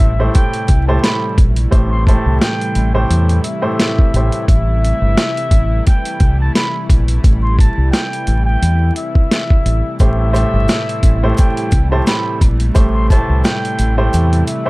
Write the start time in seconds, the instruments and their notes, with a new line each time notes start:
Already playing: upright piano A2 A3 G4 C5, analog synth pad C3 E3 G3 A3 E4, muted trumpet E5
0.00 fingered electric bass A1
0.19 upright piano A2 A3 G4 C5
0.35 muted trumpet G5, kick, closed hi-hat
0.54 closed hi-hat
0.68 fingered electric bass C2, kick, closed hi-hat
0.87 upright piano A2 A3 G4 C5, muted trumpet A5
1.03 muted trumpet B5, snare, closed hi-hat
1.38 fingered electric bass A#1, kick, closed hi-hat
1.56 closed hi-hat
1.71 fingered electric bass A1, upright piano A2 A3 G4 C5, analog synth pad E4, kick, closed hi-hat
1.91 muted trumpet C6
2.06 upright piano A2 A3 G4 C5, muted trumpet A5, kick, closed hi-hat
2.26 fingered electric bass C2
2.41 muted trumpet G5, snare, closed hi-hat
2.61 closed hi-hat
2.75 fingered electric bass A1, closed hi-hat
2.94 upright piano A2 A3 G4 C5, muted trumpet G5
3.10 fingered electric bass E2, closed hi-hat
3.29 closed hi-hat
3.44 muted trumpet E5, closed hi-hat
3.62 upright piano A2 A3 G4 C5
3.80 snare, closed hi-hat
3.99 kick
4.14 fingered electric bass A1, upright piano A2 A3 G4 C5, closed hi-hat
4.32 closed hi-hat
4.48 fingered electric bass A1, analog synth pad G3, muted trumpet E5, kick, closed hi-hat
4.85 closed hi-hat
5.02 fingered electric bass G1
5.17 snare, closed hi-hat
5.37 closed hi-hat
5.51 fingered electric bass A1, kick, closed hi-hat
5.86 muted trumpet G5, kick, closed hi-hat
6.05 closed hi-hat
6.20 fingered electric bass C2, kick, closed hi-hat
6.40 muted trumpet A5
6.55 muted trumpet B5, snare, closed hi-hat
6.90 fingered electric bass A#1, kick, closed hi-hat
7.08 closed hi-hat
7.24 fingered electric bass A1, kick, closed hi-hat
7.43 muted trumpet C6
7.59 muted trumpet A5, kick, closed hi-hat
7.78 fingered electric bass C2
7.91 muted trumpet G5, snare, closed hi-hat
8.13 closed hi-hat
8.27 fingered electric bass A1, closed hi-hat
8.45 muted trumpet G5
8.62 fingered electric bass E2, closed hi-hat
8.96 muted trumpet E5, closed hi-hat
9.15 kick
9.31 snare, closed hi-hat
9.50 kick
9.66 fingered electric bass A1, closed hi-hat
9.99 fingered electric bass A1, upright piano A2 A3 G4 C5, analog synth pad C3 E3 G3 A3 E4, muted trumpet E5, kick, closed hi-hat, maracas
10.33 upright piano A2 A3 G4 C5, closed hi-hat, maracas
10.53 fingered electric bass G1
10.68 snare, closed hi-hat, maracas
10.89 closed hi-hat
11.03 fingered electric bass A1, kick, closed hi-hat, maracas
11.23 upright piano A2 A3 G4 C5
11.37 muted trumpet G5, kick, closed hi-hat, maracas
11.57 closed hi-hat
11.71 fingered electric bass C2, kick, closed hi-hat, maracas
11.91 upright piano A2 A3 G4 C5, muted trumpet A5
12.06 muted trumpet B5, snare, closed hi-hat, maracas
12.41 fingered electric bass A#1, kick, closed hi-hat, high woodblock, maracas
12.60 closed hi-hat
12.74 fingered electric bass A1, upright piano A2 A3 G4 C5, analog synth pad E4, kick, closed hi-hat, maracas
12.94 muted trumpet C6
13.10 upright piano A2 A3 G4 C5, muted trumpet A5, kick, closed hi-hat, maracas
13.29 fingered electric bass C2
13.44 muted trumpet G5, snare, closed hi-hat, maracas
13.65 closed hi-hat
13.79 fingered electric bass A1, closed hi-hat, maracas
13.97 upright piano A2 A3 G4 C5, muted trumpet G5
14.13 fingered electric bass E2, closed hi-hat, maracas
14.33 closed hi-hat
14.47 muted trumpet E5, closed hi-hat, maracas
14.65 upright piano A2 A3 G4 C5